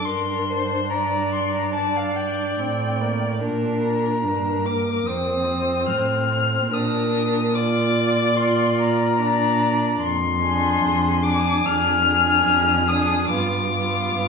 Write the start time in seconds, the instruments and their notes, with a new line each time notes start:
0.06 cello G2, viola D4, violin A#4 C6
0.50 violin C5
0.90 violin D5 A#5
1.33 violin C6
1.55 violin A#5
1.74 violin D5 A5
1.97 violin F5
2.16 violin G5
2.59 cello A2, viola C4
3.01 viola A#3
3.42 cello A#2, viola D4, violin A#4
3.82 violin A#5
4.23 cello G2, viola D4, violin A#4
4.65 viola A#3, violin D6
5.05 cello F2, viola C4, violin C5 D#6
5.89 cello A2, violin F6
6.70 cello A#2, viola D4, violin A#4 D#6
7.54 viola F4, violin D5 D6
8.36 viola F4, violin C6
8.79 violin A#5
9.20 viola D4, violin D5
10.01 cello F2, violin C6
10.42 viola D4, violin G#4
10.83 cello F2
11.23 viola D4, violin G#4 D6
11.66 cello F2, violin F6
12.06 viola D4, violin G#4
12.47 cello F2
12.88 viola D4, violin G#4 D#6
13.30 cello G2, viola B3, violin F4 D6
13.71 viola B3, violin F4
14.15 cello G2